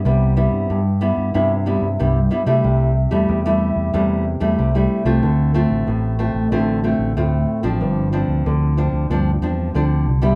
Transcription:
<<
  \new Staff \with { instrumentName = "Nylon-string guitar" } { \time 4/4 \key c \major \tempo 4 = 93 << { <g b e'>8 <g b e'>8. r16 <g b e'>8 <g b e'>16 r16 <g b e'>16 r16 <g b e'>16 r16 <g b e'>16 <g a e'>16~ | <g a e'>8 r16 <g a e'>8 <g a e'>8. <g a e'>8 r16 <g a e'>8 <g a e'>8 <a c' f'>16~ | <a c' f'>8 <a c' f'>4 <a c' f'>8 <a c' f'>8 <a c' f'>8 <a c' f'>8. <f c' d'>16~ | <f c' d'>8 <f c' d'>4 <f c' d'>8 <f c' d'>16 r16 <f c' d'>8 <f c' d'>8 r16 <g b e'>16 | } \\ { c4 g,4 c4 g,4 | c4 c4 c4 c4 | d4 a,4 d4 a,4 | g,4 d4 g,4 d4 | } >> }
  \new Staff \with { instrumentName = "Fingered electric bass" } { \clef bass \time 4/4 \key c \major c,8. g,16 g,8. g,16 g,8. g,16 c,8 r16 c16 | c,8. e,16 e,8. e,16 e,8. e,16 c,8 r16 c,16 | d,8. a,,16 a,,8. a,,16 a,,8. a,,16 d,8 r16 a,,16 | g,,8. d,16 d,8. d,16 d,8 e,8 d,8 c,8 | }
>>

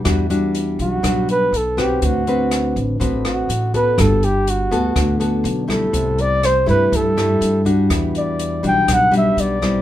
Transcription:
<<
  \new Staff \with { instrumentName = "Flugelhorn" } { \time 4/4 \key e \minor \tempo 4 = 122 r4. fis'4 b'8 a'8 g'8 | fis'4. r4 fis'4 b'8 | a'8 g'8 fis'4. r4 a'8~ | a'8 d''8 c''8 b'8 a'4. r8 |
r8 d''4 g''8 fis''8 e''8 d''4 | }
  \new Staff \with { instrumentName = "Nylon-string guitar" } { \time 4/4 \key e \minor << { <g d' fis'>8 <g d' fis'>4. <g d' fis'>4 r8 <c' fis' b'>8~ | <c' fis' b'>8 <c' fis' b'>4. <c' fis' b'>4 r8 <b fis' a'>8~ | <b fis' a'>8 r4 <b fis' a'>4 <b fis' a'>4 <g a e'>8~ | <g a e'>4. <g a e'>4 <g a e'>4 <g d' fis'>8~ |
<g d' fis'>4. <g d' fis'>4 <g d' fis'>4 <g c' e'>8 | } \\ { e2 b,2 | d2 a,2 | g2 d2 | c2 g,2 |
e2 b,2 | } >> }
  \new Staff \with { instrumentName = "Upright bass" } { \clef bass \time 4/4 \key e \minor e,4. b,,8 b,,4 b,,4 | d,4. a,,8 a,,4 a,,4 | g,,4. d,8 d,4 b,,4 | c,4. g,8 g,4 g,4 |
e,4. b,,8 b,,4 b,,4 | }
  \new DrumStaff \with { instrumentName = "Drums" } \drummode { \time 4/4 <hh bd ss>8 hh8 hh8 <hh bd>8 <hh bd ss>8 hh8 hh8 <hh bd ss>8 | <hh bd>8 hh8 <hh ss>8 <hh bd>8 <hh bd>8 <hh ss>8 hh8 <hh bd>8 | <hh bd ss>8 hh8 hh8 <hh bd>8 <hh bd ss>8 hh8 hh8 <hh bd ss>8 | <hh bd>8 hh8 <hh ss>8 <hh bd>8 <hh bd>8 <hh ss>8 hh8 <hh bd>8 |
<hh bd ss>8 hh8 hh8 <hh bd>8 <hh bd ss>8 hh8 hh8 <hh bd ss>8 | }
>>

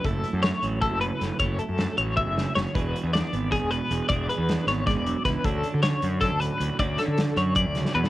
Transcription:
<<
  \new Staff \with { instrumentName = "Clean electric guitar" } { \time 7/8 \key e \mixolydian \tempo 4 = 156 a'4 cis''4 a'8 b'4 | cis''8 a'4 cis''8 e''4 cis''8 | b'4 d''4 gis'8 b'4 | d''8 b'4 cis''8 d''4 b'8 |
a'4 cis''4 a'8 b'4 | d''8 a'4 cis''8 d''4 b'8 | }
  \new Staff \with { instrumentName = "Clean electric guitar" } { \time 7/8 \key e \mixolydian << { <a e' a'>8 e'8 a4 e'4 a'8 | <a e' a'>8 e'8 a2~ a8 | <d' gis'>8 fis'16 gis'16 d'4 gis'4 gis'8 | <d' gis'>8 gis'8 d'2~ d'8 |
<cis' d' fis'>8 d'8 cis'4 d'4 fis'8 | <cis' d' fis'>8 d'2. | } \\ { fis,4. fis4 cis4 | fis,4. fis8 b,8 cis8 d8 | e4. b4 b,4 | e4. b8 gis8 fis8 e8 |
d4. fis4 a,4 | d4. fis8 d8 cis8 b,8 | } >> }
  \new Staff \with { instrumentName = "Fingered electric bass" } { \clef bass \time 7/8 \key e \mixolydian fis,,8 r16 fis,8 r16 a,,8. fis,,8 r16 fis,,16 r16 | fis,,8 r16 fis,8 r16 a,,8. fis,,8 r16 fis,,16 r16 | e,,8 r16 e,8 r16 gis,,8. e,,8 r16 e,,16 r16 | e,,8 r16 e,8 r16 gis,,8. e,,8 r16 cis,16 r16 |
d,8 r16 d8 r16 fis,8. d,8 r16 d,16 r16 | d,8 r16 d8 r16 fis,8. d,8 r16 e,16 r16 | }
  \new DrumStaff \with { instrumentName = "Drums" } \drummode { \time 7/8 <hh bd>8 hh8 <hh sn>8 hh8 <hh bd>8 hh8 <hh sn>8 | <hh bd>8 hh8 <hh sn>8 hh8 bd8 sn8 sn8 | <hh bd>8 hh8 <hh sn>8 hh8 <hh bd sn>8 hh8 hh8 | <hh bd>8 hh8 <hh sn>8 <hh sn>8 <hh bd sn>8 hh8 <hh bd sn>8 |
<hh bd>8 hh8 <hh sn>8 hh8 <hh bd>8 hh8 hh8 | <hh bd>8 <hh sn>8 <hh sn>8 hh8 <hh bd>8 <hh sn>16 sn8 sn16 | }
>>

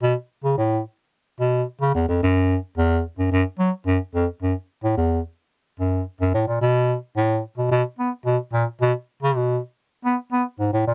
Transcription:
\new Staff \with { instrumentName = "Bass clarinet" } { \clef bass \time 4/4 \key b \mixolydian \tempo 4 = 109 b,16 r8 cis16 a,8 r4 b,8 r16 cis16 e,16 eis,16 | fis,8. r16 e,8 r16 fis,16 fis,16 r16 fis16 r16 fis,16 r16 eis,16 r16 | fis,16 r8 a,16 e,8 r4 fis,8 r16 fis,16 a,16 ais,16 | b,8. r16 a,8 r16 b,16 b,16 r16 b16 r16 b,16 r16 ais,16 r16 |
b,16 r8 cis16 b,8 r8. b16 r16 b16 r16 gis,16 a,16 ais,16 | }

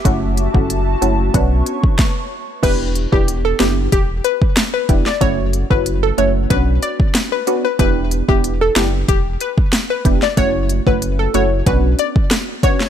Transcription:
<<
  \new Staff \with { instrumentName = "Analog synth pad" } { \time 4/4 \key e \dorian \tempo 4 = 93 <fis' e'' a''>2 <b' cis'' cis'''>4 r4 | r1 | r1 | r1 |
r1 | }
  \new Staff \with { instrumentName = "Synth pluck" } { \time 4/4 \key e \dorian r1 | b'8 r16 g'16 r16 a'16 g'16 r16 g'16 r16 b'16 r8 b'16 r16 d''16 | cis''8 r16 b'16 r16 a'16 cis''16 r16 b'16 r16 d''16 r8 b'16 r16 b'16 | b'8 r16 g'16 r16 a'16 g'16 r16 g'16 r16 b'16 r8 b'16 r16 d''16 |
cis''8 r16 b'16 r16 a'16 cis''16 r16 b'16 r16 d''16 r8. cis''16 r16 | }
  \new Staff \with { instrumentName = "Synth stab" } { \time 4/4 \key e \dorian <a cis' e' fis'>8. <a cis' e' fis'>8. <a cis' e' fis'>8 <b cis' d' fis'>4 r4 | <b d' e' g'>8. <b d' e' g'>8. <b d' e' g'>8 r4. <b d' e' g'>16 r16 | <a cis' e' fis'>8. <a cis' e' fis'>8. <a cis' e' fis'>8 <b cis' d' fis'>4. <b cis' d' fis'>16 r16 | <b d' e' g'>8. <b d' e' g'>8. <b d' e' g'>8 r4. <b d' e' g'>16 r16 |
<a cis' e' fis'>8. <a cis' e' fis'>8. <a cis' e' fis'>8 <b cis' d' fis'>4. <b cis' d' fis'>16 r16 | }
  \new Staff \with { instrumentName = "Sub bass" } { \clef bass \time 4/4 \key e \dorian fis,,8. fis,,8. fis,,8 b,,8 r4. | e,,8. e,,8. fis,,8 e,,8 r4 e,,16 r16 | fis,,8. fis,,8. fis,,8 b,,8 r4. | e,,8. e,,8. fis,,8 e,,8 r4 e,,16 r16 |
fis,,8. fis,,8. fis,,8 b,,8 r4. | }
  \new DrumStaff \with { instrumentName = "Drums" } \drummode { \time 4/4 <hh bd>8 hh16 bd16 hh8 hh8 <hh bd>8 hh16 bd16 <bd sn>4 | <cymc hh bd>8 hh16 bd16 hh8 <hh sn>8 <hh bd>8 hh16 bd16 <hh sn>8 <hh bd>16 sn16 | <hh bd>8 hh16 bd16 hh8 hh8 <hh bd>8 hh16 bd16 <hh sn>8 hh8 | <hh bd>8 hh16 bd16 hh8 <hh sn>8 <hh bd>8 hh16 bd16 <hh sn>8 <hh bd>16 sn16 |
<hh bd>8 hh16 bd16 hh8 hh8 <hh bd>8 hh16 bd16 <hh ss sn>8 <hh bd>16 sn16 | }
>>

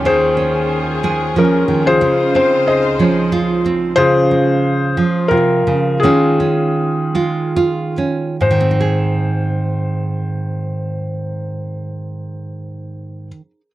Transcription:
<<
  \new Staff \with { instrumentName = "Felt piano" } { \time 3/4 \key aes \major \tempo 4 = 84 << { c''2 bes'8. c''16~ | c''8 c''8 ees''4. r8 | c''2 bes'4 | aes'2~ aes'8 r8 |
c''2.~ | c''2. | } \\ { aes'2 des'8. <f' aes'>16~ | <f' aes'>4 <aes' c''>4. r8 | <f' aes'>2 f'4 | <des' f'>2~ <des' f'>8 r8 |
r2. | r2. | } >> }
  \new Staff \with { instrumentName = "String section" } { \time 3/4 \key aes \major <ees, ees des' f' aes'>2. | <des, des ees' f' c''>2. | r2. | r2. |
r2. | r2. | }
  \new Staff \with { instrumentName = "Nylon-string guitar" } { \clef bass \time 3/4 \key aes \major << { r8 des'4 aes'4. | r8 c'4 des'8 f'8 c'8 | r8 aes2~ aes8 | <aes des' f'>8 des'4 f'8 f'8 des'8 |
<ees c' ees' aes'>2.~ | <ees c' ees' aes'>2. | } \\ { ees4. aes8 f8 ees8 | des4. f4. | des4. f8 c8 des8 | ees4. aes4. |
aes,2.~ | aes,2. | } >> }
>>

